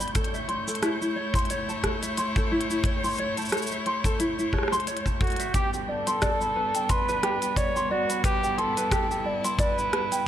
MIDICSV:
0, 0, Header, 1, 6, 480
1, 0, Start_track
1, 0, Tempo, 674157
1, 109, Time_signature, 4, 2, 24, 8
1, 7318, End_track
2, 0, Start_track
2, 0, Title_t, "Synth texture"
2, 0, Program_c, 0, 99
2, 0, Note_on_c, 0, 91, 68
2, 3959, Note_off_c, 0, 91, 0
2, 7318, End_track
3, 0, Start_track
3, 0, Title_t, "Ukulele"
3, 0, Program_c, 1, 24
3, 0, Note_on_c, 1, 83, 75
3, 102, Note_off_c, 1, 83, 0
3, 105, Note_on_c, 1, 69, 83
3, 235, Note_off_c, 1, 69, 0
3, 241, Note_on_c, 1, 76, 70
3, 337, Note_off_c, 1, 76, 0
3, 344, Note_on_c, 1, 84, 99
3, 468, Note_off_c, 1, 84, 0
3, 480, Note_on_c, 1, 69, 86
3, 577, Note_off_c, 1, 69, 0
3, 587, Note_on_c, 1, 64, 94
3, 713, Note_off_c, 1, 64, 0
3, 721, Note_on_c, 1, 64, 73
3, 823, Note_off_c, 1, 64, 0
3, 826, Note_on_c, 1, 73, 78
3, 949, Note_off_c, 1, 73, 0
3, 962, Note_on_c, 1, 84, 92
3, 1058, Note_off_c, 1, 84, 0
3, 1069, Note_on_c, 1, 73, 92
3, 1190, Note_off_c, 1, 73, 0
3, 1203, Note_on_c, 1, 81, 74
3, 1303, Note_off_c, 1, 81, 0
3, 1309, Note_on_c, 1, 69, 76
3, 1437, Note_off_c, 1, 69, 0
3, 1445, Note_on_c, 1, 76, 73
3, 1539, Note_off_c, 1, 76, 0
3, 1550, Note_on_c, 1, 84, 88
3, 1670, Note_off_c, 1, 84, 0
3, 1685, Note_on_c, 1, 69, 100
3, 1779, Note_off_c, 1, 69, 0
3, 1790, Note_on_c, 1, 64, 97
3, 1917, Note_off_c, 1, 64, 0
3, 1925, Note_on_c, 1, 64, 74
3, 2024, Note_off_c, 1, 64, 0
3, 2032, Note_on_c, 1, 73, 74
3, 2151, Note_off_c, 1, 73, 0
3, 2165, Note_on_c, 1, 84, 96
3, 2259, Note_off_c, 1, 84, 0
3, 2272, Note_on_c, 1, 73, 95
3, 2391, Note_off_c, 1, 73, 0
3, 2404, Note_on_c, 1, 81, 68
3, 2504, Note_off_c, 1, 81, 0
3, 2511, Note_on_c, 1, 69, 85
3, 2638, Note_off_c, 1, 69, 0
3, 2645, Note_on_c, 1, 76, 73
3, 2739, Note_off_c, 1, 76, 0
3, 2750, Note_on_c, 1, 84, 97
3, 2871, Note_off_c, 1, 84, 0
3, 2885, Note_on_c, 1, 69, 88
3, 2979, Note_off_c, 1, 69, 0
3, 2988, Note_on_c, 1, 64, 106
3, 3116, Note_off_c, 1, 64, 0
3, 3124, Note_on_c, 1, 64, 80
3, 3224, Note_off_c, 1, 64, 0
3, 3228, Note_on_c, 1, 73, 70
3, 3350, Note_off_c, 1, 73, 0
3, 3362, Note_on_c, 1, 84, 105
3, 3458, Note_off_c, 1, 84, 0
3, 3468, Note_on_c, 1, 73, 87
3, 3589, Note_off_c, 1, 73, 0
3, 3604, Note_on_c, 1, 81, 72
3, 3704, Note_off_c, 1, 81, 0
3, 3709, Note_on_c, 1, 69, 69
3, 3837, Note_off_c, 1, 69, 0
3, 3843, Note_on_c, 1, 76, 73
3, 3938, Note_off_c, 1, 76, 0
3, 3948, Note_on_c, 1, 67, 94
3, 4076, Note_off_c, 1, 67, 0
3, 4084, Note_on_c, 1, 67, 72
3, 4184, Note_off_c, 1, 67, 0
3, 4188, Note_on_c, 1, 74, 71
3, 4310, Note_off_c, 1, 74, 0
3, 4323, Note_on_c, 1, 84, 93
3, 4418, Note_off_c, 1, 84, 0
3, 4429, Note_on_c, 1, 74, 96
3, 4550, Note_off_c, 1, 74, 0
3, 4564, Note_on_c, 1, 83, 73
3, 4664, Note_off_c, 1, 83, 0
3, 4669, Note_on_c, 1, 71, 76
3, 4797, Note_off_c, 1, 71, 0
3, 4803, Note_on_c, 1, 79, 68
3, 4898, Note_off_c, 1, 79, 0
3, 4909, Note_on_c, 1, 84, 96
3, 5030, Note_off_c, 1, 84, 0
3, 5044, Note_on_c, 1, 71, 104
3, 5139, Note_off_c, 1, 71, 0
3, 5149, Note_on_c, 1, 67, 100
3, 5275, Note_off_c, 1, 67, 0
3, 5283, Note_on_c, 1, 67, 71
3, 5384, Note_off_c, 1, 67, 0
3, 5389, Note_on_c, 1, 74, 80
3, 5510, Note_off_c, 1, 74, 0
3, 5526, Note_on_c, 1, 84, 105
3, 5620, Note_off_c, 1, 84, 0
3, 5630, Note_on_c, 1, 74, 94
3, 5750, Note_off_c, 1, 74, 0
3, 5765, Note_on_c, 1, 83, 71
3, 5865, Note_off_c, 1, 83, 0
3, 5869, Note_on_c, 1, 71, 86
3, 5997, Note_off_c, 1, 71, 0
3, 6003, Note_on_c, 1, 79, 75
3, 6098, Note_off_c, 1, 79, 0
3, 6108, Note_on_c, 1, 84, 94
3, 6230, Note_off_c, 1, 84, 0
3, 6245, Note_on_c, 1, 71, 97
3, 6339, Note_off_c, 1, 71, 0
3, 6348, Note_on_c, 1, 67, 99
3, 6476, Note_off_c, 1, 67, 0
3, 6484, Note_on_c, 1, 67, 78
3, 6584, Note_off_c, 1, 67, 0
3, 6588, Note_on_c, 1, 74, 74
3, 6710, Note_off_c, 1, 74, 0
3, 6724, Note_on_c, 1, 84, 97
3, 6819, Note_off_c, 1, 84, 0
3, 6830, Note_on_c, 1, 74, 107
3, 6950, Note_off_c, 1, 74, 0
3, 6965, Note_on_c, 1, 83, 80
3, 7065, Note_off_c, 1, 83, 0
3, 7069, Note_on_c, 1, 71, 75
3, 7197, Note_off_c, 1, 71, 0
3, 7203, Note_on_c, 1, 79, 79
3, 7298, Note_off_c, 1, 79, 0
3, 7318, End_track
4, 0, Start_track
4, 0, Title_t, "Flugelhorn"
4, 0, Program_c, 2, 56
4, 3708, Note_on_c, 2, 66, 86
4, 3932, Note_off_c, 2, 66, 0
4, 3945, Note_on_c, 2, 67, 106
4, 4054, Note_off_c, 2, 67, 0
4, 4188, Note_on_c, 2, 69, 105
4, 4910, Note_on_c, 2, 71, 101
4, 4921, Note_off_c, 2, 69, 0
4, 5389, Note_on_c, 2, 73, 106
4, 5399, Note_off_c, 2, 71, 0
4, 5625, Note_off_c, 2, 73, 0
4, 5629, Note_on_c, 2, 66, 102
4, 5852, Note_off_c, 2, 66, 0
4, 5870, Note_on_c, 2, 67, 115
4, 6111, Note_on_c, 2, 69, 105
4, 6122, Note_off_c, 2, 67, 0
4, 6644, Note_off_c, 2, 69, 0
4, 6831, Note_on_c, 2, 71, 98
4, 7318, Note_off_c, 2, 71, 0
4, 7318, End_track
5, 0, Start_track
5, 0, Title_t, "String quartet"
5, 0, Program_c, 3, 48
5, 0, Note_on_c, 3, 55, 72
5, 0, Note_on_c, 3, 59, 76
5, 0, Note_on_c, 3, 62, 69
5, 79, Note_off_c, 3, 59, 0
5, 79, Note_off_c, 3, 62, 0
5, 80, Note_off_c, 3, 55, 0
5, 105, Note_on_c, 3, 57, 72
5, 106, Note_on_c, 3, 64, 74
5, 106, Note_on_c, 3, 73, 84
5, 3919, Note_off_c, 3, 57, 0
5, 3919, Note_off_c, 3, 64, 0
5, 3919, Note_off_c, 3, 73, 0
5, 3947, Note_on_c, 3, 59, 80
5, 3948, Note_on_c, 3, 55, 75
5, 3949, Note_on_c, 3, 62, 71
5, 5850, Note_off_c, 3, 62, 0
5, 5868, Note_on_c, 3, 64, 76
5, 7318, Note_off_c, 3, 55, 0
5, 7318, Note_off_c, 3, 59, 0
5, 7318, Note_off_c, 3, 64, 0
5, 7318, End_track
6, 0, Start_track
6, 0, Title_t, "Drums"
6, 2, Note_on_c, 9, 42, 19
6, 4, Note_on_c, 9, 69, 60
6, 54, Note_off_c, 9, 42, 0
6, 54, Note_on_c, 9, 42, 23
6, 75, Note_off_c, 9, 69, 0
6, 107, Note_off_c, 9, 42, 0
6, 107, Note_on_c, 9, 42, 55
6, 109, Note_on_c, 9, 36, 106
6, 109, Note_on_c, 9, 69, 52
6, 174, Note_off_c, 9, 42, 0
6, 174, Note_on_c, 9, 42, 37
6, 180, Note_off_c, 9, 36, 0
6, 180, Note_off_c, 9, 69, 0
6, 244, Note_on_c, 9, 69, 29
6, 245, Note_off_c, 9, 42, 0
6, 316, Note_off_c, 9, 69, 0
6, 347, Note_on_c, 9, 42, 29
6, 418, Note_off_c, 9, 42, 0
6, 484, Note_on_c, 9, 69, 58
6, 535, Note_on_c, 9, 42, 43
6, 555, Note_off_c, 9, 69, 0
6, 588, Note_off_c, 9, 42, 0
6, 588, Note_on_c, 9, 37, 70
6, 588, Note_on_c, 9, 42, 54
6, 590, Note_on_c, 9, 69, 49
6, 659, Note_off_c, 9, 37, 0
6, 659, Note_off_c, 9, 42, 0
6, 662, Note_off_c, 9, 69, 0
6, 725, Note_on_c, 9, 69, 30
6, 797, Note_off_c, 9, 69, 0
6, 953, Note_on_c, 9, 36, 92
6, 963, Note_on_c, 9, 42, 39
6, 965, Note_on_c, 9, 69, 60
6, 988, Note_off_c, 9, 42, 0
6, 988, Note_on_c, 9, 42, 32
6, 1024, Note_off_c, 9, 36, 0
6, 1034, Note_off_c, 9, 42, 0
6, 1034, Note_on_c, 9, 42, 25
6, 1036, Note_off_c, 9, 69, 0
6, 1068, Note_off_c, 9, 42, 0
6, 1068, Note_on_c, 9, 42, 50
6, 1070, Note_on_c, 9, 69, 51
6, 1139, Note_off_c, 9, 42, 0
6, 1142, Note_off_c, 9, 69, 0
6, 1206, Note_on_c, 9, 69, 28
6, 1277, Note_off_c, 9, 69, 0
6, 1307, Note_on_c, 9, 36, 50
6, 1308, Note_on_c, 9, 37, 69
6, 1308, Note_on_c, 9, 42, 49
6, 1378, Note_off_c, 9, 36, 0
6, 1379, Note_off_c, 9, 37, 0
6, 1379, Note_off_c, 9, 42, 0
6, 1443, Note_on_c, 9, 42, 47
6, 1445, Note_on_c, 9, 69, 64
6, 1514, Note_off_c, 9, 42, 0
6, 1516, Note_off_c, 9, 69, 0
6, 1548, Note_on_c, 9, 42, 56
6, 1551, Note_on_c, 9, 69, 50
6, 1619, Note_off_c, 9, 42, 0
6, 1622, Note_off_c, 9, 69, 0
6, 1680, Note_on_c, 9, 36, 102
6, 1686, Note_on_c, 9, 69, 30
6, 1752, Note_off_c, 9, 36, 0
6, 1757, Note_off_c, 9, 69, 0
6, 1856, Note_on_c, 9, 42, 44
6, 1926, Note_on_c, 9, 69, 58
6, 1927, Note_off_c, 9, 42, 0
6, 1997, Note_off_c, 9, 69, 0
6, 2020, Note_on_c, 9, 36, 118
6, 2029, Note_on_c, 9, 42, 52
6, 2091, Note_off_c, 9, 36, 0
6, 2100, Note_off_c, 9, 42, 0
6, 2166, Note_on_c, 9, 69, 52
6, 2182, Note_off_c, 9, 69, 0
6, 2182, Note_on_c, 9, 69, 18
6, 2196, Note_off_c, 9, 69, 0
6, 2196, Note_on_c, 9, 69, 18
6, 2211, Note_off_c, 9, 69, 0
6, 2211, Note_on_c, 9, 69, 22
6, 2226, Note_off_c, 9, 69, 0
6, 2226, Note_on_c, 9, 69, 23
6, 2241, Note_off_c, 9, 69, 0
6, 2241, Note_on_c, 9, 69, 26
6, 2256, Note_off_c, 9, 69, 0
6, 2256, Note_on_c, 9, 69, 26
6, 2268, Note_on_c, 9, 42, 29
6, 2327, Note_off_c, 9, 69, 0
6, 2339, Note_off_c, 9, 42, 0
6, 2402, Note_on_c, 9, 42, 40
6, 2405, Note_on_c, 9, 69, 26
6, 2431, Note_off_c, 9, 69, 0
6, 2431, Note_on_c, 9, 69, 31
6, 2458, Note_off_c, 9, 69, 0
6, 2458, Note_on_c, 9, 69, 33
6, 2474, Note_off_c, 9, 42, 0
6, 2483, Note_off_c, 9, 69, 0
6, 2483, Note_on_c, 9, 69, 39
6, 2509, Note_on_c, 9, 37, 80
6, 2509, Note_on_c, 9, 42, 57
6, 2511, Note_off_c, 9, 69, 0
6, 2511, Note_on_c, 9, 69, 53
6, 2544, Note_off_c, 9, 69, 0
6, 2544, Note_on_c, 9, 69, 49
6, 2578, Note_off_c, 9, 69, 0
6, 2578, Note_on_c, 9, 69, 51
6, 2580, Note_off_c, 9, 37, 0
6, 2580, Note_off_c, 9, 42, 0
6, 2611, Note_off_c, 9, 69, 0
6, 2611, Note_on_c, 9, 69, 56
6, 2644, Note_off_c, 9, 69, 0
6, 2644, Note_on_c, 9, 69, 30
6, 2715, Note_off_c, 9, 69, 0
6, 2748, Note_on_c, 9, 42, 30
6, 2819, Note_off_c, 9, 42, 0
6, 2879, Note_on_c, 9, 36, 88
6, 2883, Note_on_c, 9, 42, 43
6, 2885, Note_on_c, 9, 69, 61
6, 2950, Note_off_c, 9, 36, 0
6, 2954, Note_off_c, 9, 42, 0
6, 2957, Note_off_c, 9, 69, 0
6, 2989, Note_on_c, 9, 42, 58
6, 2992, Note_on_c, 9, 69, 52
6, 3060, Note_off_c, 9, 42, 0
6, 3063, Note_off_c, 9, 69, 0
6, 3127, Note_on_c, 9, 69, 29
6, 3199, Note_off_c, 9, 69, 0
6, 3224, Note_on_c, 9, 36, 53
6, 3229, Note_on_c, 9, 37, 35
6, 3264, Note_off_c, 9, 37, 0
6, 3264, Note_on_c, 9, 37, 45
6, 3295, Note_off_c, 9, 36, 0
6, 3297, Note_off_c, 9, 37, 0
6, 3297, Note_on_c, 9, 37, 54
6, 3331, Note_off_c, 9, 37, 0
6, 3331, Note_on_c, 9, 37, 65
6, 3366, Note_on_c, 9, 42, 21
6, 3368, Note_on_c, 9, 69, 64
6, 3402, Note_off_c, 9, 37, 0
6, 3417, Note_off_c, 9, 42, 0
6, 3417, Note_on_c, 9, 42, 26
6, 3439, Note_off_c, 9, 69, 0
6, 3469, Note_off_c, 9, 42, 0
6, 3469, Note_on_c, 9, 42, 56
6, 3471, Note_on_c, 9, 69, 51
6, 3536, Note_off_c, 9, 42, 0
6, 3536, Note_on_c, 9, 42, 37
6, 3542, Note_off_c, 9, 69, 0
6, 3601, Note_on_c, 9, 36, 54
6, 3606, Note_on_c, 9, 69, 28
6, 3607, Note_off_c, 9, 42, 0
6, 3672, Note_off_c, 9, 36, 0
6, 3677, Note_off_c, 9, 69, 0
6, 3707, Note_on_c, 9, 36, 99
6, 3708, Note_on_c, 9, 42, 13
6, 3731, Note_off_c, 9, 42, 0
6, 3731, Note_on_c, 9, 42, 16
6, 3753, Note_off_c, 9, 42, 0
6, 3753, Note_on_c, 9, 42, 18
6, 3775, Note_off_c, 9, 42, 0
6, 3775, Note_on_c, 9, 42, 22
6, 3779, Note_off_c, 9, 36, 0
6, 3787, Note_off_c, 9, 42, 0
6, 3787, Note_on_c, 9, 42, 23
6, 3819, Note_off_c, 9, 42, 0
6, 3819, Note_on_c, 9, 42, 28
6, 3843, Note_off_c, 9, 42, 0
6, 3843, Note_on_c, 9, 42, 45
6, 3845, Note_on_c, 9, 69, 57
6, 3914, Note_off_c, 9, 42, 0
6, 3916, Note_off_c, 9, 69, 0
6, 3946, Note_on_c, 9, 36, 96
6, 3948, Note_on_c, 9, 42, 54
6, 3950, Note_on_c, 9, 69, 56
6, 4017, Note_off_c, 9, 36, 0
6, 4019, Note_off_c, 9, 42, 0
6, 4021, Note_off_c, 9, 69, 0
6, 4085, Note_on_c, 9, 69, 34
6, 4156, Note_off_c, 9, 69, 0
6, 4322, Note_on_c, 9, 42, 45
6, 4325, Note_on_c, 9, 69, 61
6, 4393, Note_off_c, 9, 42, 0
6, 4396, Note_off_c, 9, 69, 0
6, 4428, Note_on_c, 9, 37, 81
6, 4428, Note_on_c, 9, 42, 53
6, 4430, Note_on_c, 9, 69, 51
6, 4432, Note_on_c, 9, 36, 98
6, 4499, Note_off_c, 9, 37, 0
6, 4499, Note_off_c, 9, 42, 0
6, 4501, Note_off_c, 9, 69, 0
6, 4503, Note_off_c, 9, 36, 0
6, 4565, Note_on_c, 9, 69, 29
6, 4636, Note_off_c, 9, 69, 0
6, 4804, Note_on_c, 9, 42, 43
6, 4806, Note_on_c, 9, 69, 63
6, 4875, Note_off_c, 9, 42, 0
6, 4877, Note_off_c, 9, 69, 0
6, 4909, Note_on_c, 9, 42, 59
6, 4910, Note_on_c, 9, 36, 95
6, 4911, Note_on_c, 9, 69, 56
6, 4980, Note_off_c, 9, 42, 0
6, 4981, Note_off_c, 9, 36, 0
6, 4982, Note_off_c, 9, 69, 0
6, 5047, Note_on_c, 9, 69, 34
6, 5118, Note_off_c, 9, 69, 0
6, 5150, Note_on_c, 9, 37, 80
6, 5150, Note_on_c, 9, 42, 59
6, 5221, Note_off_c, 9, 37, 0
6, 5221, Note_off_c, 9, 42, 0
6, 5283, Note_on_c, 9, 42, 50
6, 5286, Note_on_c, 9, 69, 66
6, 5355, Note_off_c, 9, 42, 0
6, 5357, Note_off_c, 9, 69, 0
6, 5386, Note_on_c, 9, 36, 84
6, 5390, Note_on_c, 9, 42, 58
6, 5393, Note_on_c, 9, 69, 58
6, 5457, Note_off_c, 9, 36, 0
6, 5461, Note_off_c, 9, 42, 0
6, 5464, Note_off_c, 9, 69, 0
6, 5528, Note_on_c, 9, 69, 32
6, 5599, Note_off_c, 9, 69, 0
6, 5766, Note_on_c, 9, 42, 46
6, 5768, Note_on_c, 9, 69, 65
6, 5837, Note_off_c, 9, 42, 0
6, 5839, Note_off_c, 9, 69, 0
6, 5866, Note_on_c, 9, 36, 126
6, 5872, Note_on_c, 9, 42, 58
6, 5874, Note_on_c, 9, 69, 58
6, 5938, Note_off_c, 9, 36, 0
6, 5943, Note_off_c, 9, 42, 0
6, 5946, Note_off_c, 9, 69, 0
6, 6008, Note_on_c, 9, 69, 35
6, 6079, Note_off_c, 9, 69, 0
6, 6113, Note_on_c, 9, 42, 31
6, 6184, Note_off_c, 9, 42, 0
6, 6246, Note_on_c, 9, 42, 42
6, 6248, Note_on_c, 9, 69, 70
6, 6317, Note_off_c, 9, 42, 0
6, 6320, Note_off_c, 9, 69, 0
6, 6347, Note_on_c, 9, 36, 96
6, 6351, Note_on_c, 9, 37, 78
6, 6351, Note_on_c, 9, 42, 56
6, 6353, Note_on_c, 9, 69, 57
6, 6418, Note_off_c, 9, 36, 0
6, 6422, Note_off_c, 9, 37, 0
6, 6422, Note_off_c, 9, 42, 0
6, 6424, Note_off_c, 9, 69, 0
6, 6488, Note_on_c, 9, 69, 33
6, 6560, Note_off_c, 9, 69, 0
6, 6725, Note_on_c, 9, 42, 41
6, 6727, Note_on_c, 9, 69, 67
6, 6796, Note_off_c, 9, 42, 0
6, 6798, Note_off_c, 9, 69, 0
6, 6825, Note_on_c, 9, 36, 111
6, 6831, Note_on_c, 9, 42, 53
6, 6833, Note_on_c, 9, 69, 57
6, 6896, Note_off_c, 9, 36, 0
6, 6902, Note_off_c, 9, 42, 0
6, 6904, Note_off_c, 9, 69, 0
6, 6967, Note_on_c, 9, 69, 33
6, 7039, Note_off_c, 9, 69, 0
6, 7071, Note_on_c, 9, 37, 81
6, 7071, Note_on_c, 9, 42, 51
6, 7142, Note_off_c, 9, 37, 0
6, 7142, Note_off_c, 9, 42, 0
6, 7206, Note_on_c, 9, 42, 47
6, 7208, Note_on_c, 9, 69, 76
6, 7277, Note_off_c, 9, 42, 0
6, 7279, Note_off_c, 9, 69, 0
6, 7318, End_track
0, 0, End_of_file